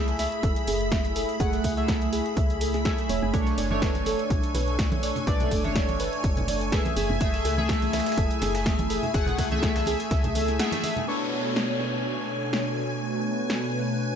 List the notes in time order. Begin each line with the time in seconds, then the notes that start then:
Already playing: C#2 A3 E4 G#4 E5 B5
0.08 snare, closed hi-hat
0.19 E5, snare, closed hi-hat, open hi-hat
0.32 closed hi-hat
0.43 F#1 A4, kick, closed hi-hat
0.56 closed hi-hat
0.67 F#1 G#4, closed hi-hat, open hi-hat
0.81 closed hi-hat
0.92 E5, kick, snare, closed hi-hat
1.05 closed hi-hat
1.16 A4, closed hi-hat, open hi-hat
1.29 closed hi-hat
1.40 F#1 A3 G#4 F#5, kick, closed hi-hat
1.53 snare, closed hi-hat
1.64 C#2 E5, kick, closed hi-hat, open hi-hat
1.77 A3 G#4 E5, closed hi-hat
1.88 A4, kick, snare, closed hi-hat
2.02 closed hi-hat
2.13 G#4, closed hi-hat, open hi-hat
2.26 closed hi-hat
2.37 C#2 E5, kick, closed hi-hat
2.50 closed hi-hat
2.61 A4, closed hi-hat, open hi-hat
2.74 G#4, snare, closed hi-hat
2.85 A3 G#4 E5, kick, snare, closed hi-hat
2.98 closed hi-hat
3.09 E1 C#5, closed hi-hat, open hi-hat
3.22 F#1 G#5
3.33 B1 A3 D4 A4 C#5 G#5 C#6, kick, closed hi-hat
3.47 snare, closed hi-hat
3.58 F#1 D5, snare, closed hi-hat, open hi-hat
3.70 A3 D4 C#5, snare, high conga
3.82 B4, kick, snare, closed hi-hat
3.95 snare, closed hi-hat, high conga
4.06 A4, snare, closed hi-hat, open hi-hat, muted conga
4.19 closed hi-hat
4.30 B1 D5, kick, closed hi-hat
4.43 closed hi-hat
4.55 B1 B4, closed hi-hat, open hi-hat, muted conga
4.68 closed hi-hat
4.79 A4, kick, snare, closed hi-hat
4.92 closed hi-hat, muted conga, high conga
5.03 D5, closed hi-hat, open hi-hat
5.16 closed hi-hat, low conga
5.27 B1 A3 D4 B4 D5, kick, closed hi-hat
5.40 snare, closed hi-hat, low conga
5.51 F#1 A4, kick, closed hi-hat, open hi-hat
5.64 A3 D4 C#5, closed hi-hat, high conga
5.76 D5, kick, snare, closed hi-hat
5.89 closed hi-hat, high conga
6.00 B4, closed hi-hat, open hi-hat
6.13 closed hi-hat
6.24 F#1 A4, kick, closed hi-hat
6.37 closed hi-hat, low conga
6.48 D5, closed hi-hat, open hi-hat, muted conga
6.61 closed hi-hat
6.72 A3 G#4 B4 E5, kick, snare, closed hi-hat
6.85 closed hi-hat, high conga
6.96 F#1 A3 E4 G#4, closed hi-hat, open hi-hat
7.09 F#1, muted conga, low conga
7.20 F#1 A3 G#4 E5, kick, closed hi-hat
7.34 snare, closed hi-hat
7.45 C#2 A4, snare, closed hi-hat, open hi-hat
7.58 A3 G#4 E5, snare, high conga
7.69 G#4, kick, snare, closed hi-hat
7.82 snare, closed hi-hat, high conga
7.93 E5, snare, closed hi-hat, open hi-hat, muted conga
8.00 snare, closed hi-hat
8.06 snare, closed hi-hat
8.12 snare, closed hi-hat
8.18 F#1 A4, kick, closed hi-hat
8.31 closed hi-hat
8.42 F#1 G#4, snare, closed hi-hat, open hi-hat, muted conga
8.55 snare, closed hi-hat
8.66 E5, kick, snare, closed hi-hat
8.79 closed hi-hat, muted conga, high conga
8.90 A4, closed hi-hat, open hi-hat
9.03 closed hi-hat, low conga
9.14 F#1 A3 G#4 F#5, kick, closed hi-hat
9.26 snare, closed hi-hat, low conga
9.38 C#2 E5, kick, snare, closed hi-hat, open hi-hat
9.51 A3 G#4 E5, closed hi-hat, high conga
9.63 A4, kick, snare, closed hi-hat
9.76 snare, closed hi-hat, high conga
9.86 G#4, snare, open hi-hat, muted conga
10.00 closed hi-hat
10.11 C#2 E5, kick, snare, closed hi-hat
10.24 closed hi-hat, low conga
10.35 A4, closed hi-hat, open hi-hat, muted conga
10.48 snare, closed hi-hat
10.59 A3 G#4 E5 F#5, snare, closed hi-hat
10.72 snare, closed hi-hat, high conga
10.84 E5, closed hi-hat, open hi-hat, muted conga
10.96 closed hi-hat, muted conga, low conga
11.07 B2 A3 B3 D4 F#4 A4 C#5 G#5, downlifter
11.56 snare
11.80 snare
12.53 snare
13.01 B4
13.50 snare